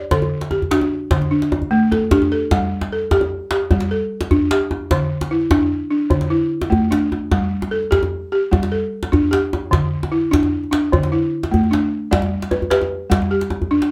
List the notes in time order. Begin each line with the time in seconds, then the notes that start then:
Already playing: G4 C#5 D5
0.11 D3 A4, djembe slap, djembe bass
0.22 djembe slap, djembe tone
0.41 djembe slap
0.51 G4, djembe slap, djembe tone
0.62 djembe bass
0.71 D4 F#4, djembe slap
0.81 djembe tone
1.11 D3, djembe slap, djembe bass
1.22 djembe slap, djembe tone
1.31 D4
1.42 djembe slap
1.52 djembe slap, djembe tone
1.62 djembe slap, djembe bass
1.71 A3
1.92 A4, djembe tone
2.11 D4 G4, djembe slap, djembe bass
2.22 djembe tone
2.32 A4, djembe slap
2.51 G3, djembe slap, djembe bass
2.81 djembe slap, djembe tone
2.92 A4
3.02 djembe slap
3.11 G4, djembe slap, djembe bass
3.21 djembe slap, djembe tone
3.51 G4, djembe slap
3.71 G3, djembe tone, djembe bass
3.80 djembe slap
3.91 A4
4.21 djembe slap, djembe tone
4.31 D4, djembe bass
4.51 G4, djembe slap
4.71 djembe tone
4.91 D3, djembe slap, djembe bass
5.21 djembe slap, djembe tone
5.31 E4
5.41 djembe slap
5.51 D4, djembe slap, djembe bass
5.61 djembe slap
5.91 D4
6.10 D3, djembe tone, djembe bass
6.21 djembe slap
6.30 E4
6.62 djembe slap, djembe tone
6.70 A3, djembe bass
6.91 D4, djembe slap
7.12 djembe tone
7.31 G3, djembe slap, djembe bass
7.62 djembe slap, djembe tone
7.71 A4
7.83 djembe slap
7.91 G4, djembe slap, djembe bass
8.03 djembe slap, djembe tone
8.32 G4
8.51 G3, djembe tone, djembe bass
8.63 djembe slap
8.72 A4
9.03 djembe slap, djembe tone
9.12 D4, djembe bass
9.31 G4, djembe slap
9.53 djembe tone
9.71 D3, djembe slap, djembe bass
10.03 djembe slap, djembe tone
10.12 E4
10.31 D4, djembe slap, djembe bass
10.43 djembe tone
10.64 djembe slap
10.71 D4, djembe slap
10.92 D3, djembe tone, djembe bass
11.03 djembe slap
11.12 E4
11.43 djembe slap, djembe tone
11.51 A3, djembe bass
11.63 djembe slap
11.71 D4, djembe slap
12.11 G3 D5, djembe slap, djembe bass
12.22 djembe slap, djembe tone
12.42 djembe slap
12.51 B4, djembe tone
12.62 djembe bass
12.70 G4 B4, djembe slap
12.81 djembe tone
13.10 G3, djembe slap, djembe bass
13.22 djembe tone
13.31 G4
13.41 djembe slap
13.50 djembe slap, djembe tone
13.62 djembe bass
13.71 D4
13.82 djembe slap